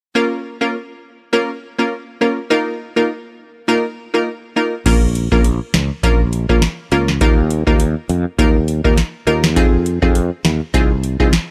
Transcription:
0.15 synth stab A#3 C#4 F4 A#4
0.61 synth stab A#3 C#4 F4 A#4
1.33 synth stab A#3 C#4 F4 A#4
1.79 synth stab A#3 C#4 F4 A#4
2.21 synth stab A#3 C#4 F4 A#4
2.50 synth stab A#3 D#4 F4 A#4
2.96 synth stab A#3 D#4 F4 A#4
3.68 synth stab A#3 D#4 F4 A#4
4.14 synth stab A#3 D#4 F4 A#4
4.56 synth stab A#3 D#4 F4 A#4
4.86 fretless electric bass A#1, synth stab A#3 C#4 F4 A#4, kick, closed hi-hat, crash
5.15 closed hi-hat
5.32 fretless electric bass A#1, synth stab A#3 C#4 F4 A#4, kick
5.44 closed hi-hat
5.74 fretless electric bass C#2, snare, closed hi-hat
6.03 fretless electric bass A#1, synth stab A#3 C#4 F4 A#4, kick, closed hi-hat
6.33 closed hi-hat
6.49 fretless electric bass A#1, synth stab A#3 C#4 F4 A#4, kick
6.62 snare, closed hi-hat
6.92 fretless electric bass C#2, synth stab A#3 C#4 F4 A#4, closed hi-hat
7.08 snare
7.21 fretless electric bass D#2, synth stab A#3 D#4 F4 A#4, kick, closed hi-hat
7.50 closed hi-hat
7.67 fretless electric bass D#2, synth stab A#3 D#4 F4 A#4, kick
7.80 closed hi-hat
8.09 fretless electric bass F2, closed hi-hat
8.38 fretless electric bass D#2, synth stab A#3 D#4 F4 A#4, kick, closed hi-hat
8.68 closed hi-hat
8.84 fretless electric bass D#2, synth stab A#3 D#4 F4 A#4, kick
8.98 snare, closed hi-hat
9.27 fretless electric bass D#2, synth stab A#3 D#4 F4 A#4, closed hi-hat
9.44 snare
9.56 fretless electric bass F2, synth stab C4 D#4 F4 G#4, kick, closed hi-hat
9.86 closed hi-hat
10.02 fretless electric bass F2, synth stab C4 D#4 F4 G#4, kick
10.15 closed hi-hat
10.45 fretless electric bass D#2, snare, closed hi-hat
10.74 fretless electric bass C2, synth stab C4 D#4 F4 G#4, kick, closed hi-hat
11.04 closed hi-hat
11.20 fretless electric bass C2, synth stab C4 D#4 F4 G#4, kick
11.33 snare, closed hi-hat

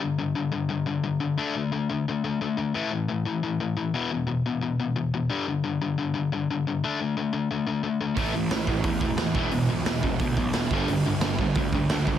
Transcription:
0.01 distorted electric guitar G2 D3
0.19 distorted electric guitar G2 D3
0.35 distorted electric guitar G2 D3
0.52 distorted electric guitar G2 D3
0.69 distorted electric guitar G2 D3
0.86 distorted electric guitar G2 D3
1.04 distorted electric guitar G2 D3
1.20 distorted electric guitar G2 D3
1.38 distorted electric guitar D3 A3 D4
1.55 distorted electric guitar D3 A3
1.72 distorted electric guitar D3 A3
1.90 distorted electric guitar D3 A3
2.08 distorted electric guitar D3 A3
2.24 distorted electric guitar D3 A3
2.41 distorted electric guitar D3 A3
2.57 distorted electric guitar D3 A3
2.74 distorted electric guitar A2 E3 A3
2.91 distorted electric guitar A2 E3
3.08 distorted electric guitar A2 E3
3.25 distorted electric guitar A2 E3
3.43 distorted electric guitar A2 E3
3.60 distorted electric guitar A2 E3
3.77 distorted electric guitar A2 E3
3.94 distorted electric guitar E2 B2 E3
4.11 distorted electric guitar E2 B2
4.27 distorted electric guitar E2 B2
4.46 distorted electric guitar E2 B2
4.61 distorted electric guitar E2 B2
4.80 distorted electric guitar E2 B2
4.96 distorted electric guitar E2 B2
5.14 distorted electric guitar E2 B2
5.30 distorted electric guitar G2 D3 G3
5.47 distorted electric guitar G2 D3
5.64 distorted electric guitar G2 D3
5.82 distorted electric guitar G2 D3
5.98 distorted electric guitar G2 D3
6.14 distorted electric guitar G2 D3
6.32 distorted electric guitar G2 D3
6.51 distorted electric guitar G2 D3
6.67 distorted electric guitar G2 D3
6.84 distorted electric guitar D3 A3 D4
7.00 distorted electric guitar D3 A3
7.17 distorted electric guitar D3 A3
7.33 distorted electric guitar D3 A3
7.51 distorted electric guitar D3 A3
7.67 distorted electric guitar D3 A3
7.83 distorted electric guitar D3 A3
8.01 distorted electric guitar D3 A3
8.16 picked electric bass A1, distorted electric guitar A2 E3 A3, kick, open hi-hat
8.34 picked electric bass A1, distorted electric guitar A2 E3
8.51 picked electric bass A1, distorted electric guitar A2 E3, snare, open hi-hat
8.67 picked electric bass A1, distorted electric guitar A2 E3, kick
8.84 picked electric bass E2, distorted electric guitar A2 E3, kick, open hi-hat
9.01 picked electric bass E1, distorted electric guitar A2 E3, kick
9.17 picked electric bass E2, distorted electric guitar A2 E3, snare, open hi-hat
9.35 picked electric bass E1, distorted electric guitar E2 B2 E3, kick
9.51 picked electric bass E1, distorted electric guitar E2 B2, open hi-hat
9.69 picked electric bass B1, distorted electric guitar E2 B2
9.86 picked electric bass E1, distorted electric guitar E2 B2, snare, open hi-hat
10.03 picked electric bass E1, distorted electric guitar E2 B2, kick
10.19 picked electric bass D2, distorted electric guitar E2 B2, kick, open hi-hat
10.36 picked electric bass B1, distorted electric guitar E2 B2, kick
10.53 picked electric bass E1, distorted electric guitar E2 B2, snare, open hi-hat
10.71 picked electric bass G1, distorted electric guitar G2 D3 G3, kick
10.88 picked electric bass G1, distorted electric guitar G2 D3, open hi-hat
11.05 picked electric bass G1, distorted electric guitar G2 D3
11.21 picked electric bass G1, distorted electric guitar G2 D3, snare, open hi-hat
11.38 picked electric bass G1, distorted electric guitar G2 D3, kick
11.55 picked electric bass D2, distorted electric guitar G2 D3, kick, open hi-hat
11.72 picked electric bass D2, distorted electric guitar G2 D3, kick
11.89 picked electric bass D2, distorted electric guitar G2 D3, snare, open hi-hat
12.07 picked electric bass C#2, distorted electric guitar G2 D3, kick

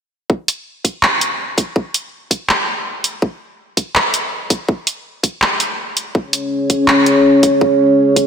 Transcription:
0.30 kick
0.48 closed hi-hat
0.84 kick, closed hi-hat
1.03 clap
1.21 closed hi-hat
1.58 kick, closed hi-hat
1.76 kick
1.94 closed hi-hat
2.31 kick, closed hi-hat
2.49 clap
3.04 closed hi-hat
3.22 kick
3.77 kick, closed hi-hat
3.95 clap
4.14 closed hi-hat
4.50 kick, closed hi-hat
4.68 kick
4.87 closed hi-hat
5.23 kick, closed hi-hat
5.42 clap
5.60 closed hi-hat
5.97 closed hi-hat
6.15 analog synth pad C#4 G#4 C#5, kick
6.33 closed hi-hat
6.70 kick, closed hi-hat
6.88 clap
7.06 closed hi-hat
7.43 kick, closed hi-hat
7.61 kick
8.16 kick, closed hi-hat

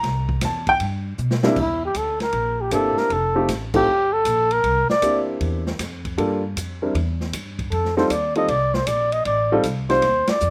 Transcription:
Already playing: upright piano A#5
0.03 upright bass C2, kick, snare, ride
0.29 kick
0.41 upright bass E2, upright piano A5, kick, snare, hi-hat pedal, ride
0.67 upright piano G5, kick, ride
0.80 upright bass G2, kick, ride
1.18 upright bass B2, hi-hat pedal
1.31 snare
1.43 upright piano C3 G3 A#3 D4 E4, snare
1.56 upright bass E2, flugelhorn E4, kick, crash
1.85 flugelhorn G4
1.94 upright bass D2, flugelhorn A4, kick, hi-hat pedal, ride
2.20 flugelhorn A#4, snare, ride
2.32 upright bass A#1, kick, ride
2.61 flugelhorn G4
2.71 upright bass G1, upright piano A#3 C4 D4 E4 G4, flugelhorn A4, kick, hi-hat pedal, ride
2.96 flugelhorn A#4, muted upright bass stroke, snare
3.10 upright bass F1, flugelhorn A4, kick, ride
3.35 upright piano A3 C4 D#4 F4 G4
3.48 upright bass A1, kick, snare, hi-hat pedal, ride
3.74 upright piano A3 C4 D#4 F4 A4, flugelhorn G4, kick, crash
3.87 upright bass G1
4.13 flugelhorn A4
4.25 upright bass A#1, kick, hi-hat pedal, ride
4.51 flugelhorn A#4, ride
4.64 upright bass C2, kick, ride
4.89 flugelhorn D5, muted upright bass stroke, snare
5.02 upright bass D2, upright piano A#3 C4 D4 E4 G4, kick, hi-hat pedal, ride
5.41 upright bass E2, kick, ride
5.67 snare
5.79 upright bass F2, kick, snare, hi-hat pedal, ride
6.05 kick, ride
6.17 upright bass G2, upright piano G3 A#3 D4 F4 A4, kick, ride
6.56 upright bass F2, kick, hi-hat pedal, ride
6.82 upright piano G3 C4 D4 E4 A#4
6.95 upright bass E2, kick, ride
7.21 snare
7.33 upright bass G2, kick, hi-hat pedal, ride
7.59 kick, ride
7.72 upright bass F2, flugelhorn A4, kick, ride
7.85 snare
7.97 upright piano G3 C4 D#4 F4 A4, flugelhorn C5, snare
8.10 upright bass D#2, flugelhorn D5, kick, hi-hat pedal, ride
8.35 upright piano G3 C4 D#4 F4 A4, flugelhorn D#5, ride
8.48 upright bass C2, flugelhorn D5, kick, ride
8.74 flugelhorn C5, snare
8.87 upright bass A#1, flugelhorn D5, kick, hi-hat pedal, ride
9.12 flugelhorn D#5, ride
9.25 upright bass A1, flugelhorn D5, kick, ride
9.52 upright piano G3 C4 D#4 F4 A4
9.63 upright bass C2, kick, hi-hat pedal, ride
9.90 upright piano G3 C4 D#4 F4 C5, flugelhorn C5, snare, ride
10.02 upright bass D#2, kick, snare, ride
10.27 flugelhorn D5, muted upright bass stroke, snare, ride
10.40 upright bass F2, hi-hat pedal

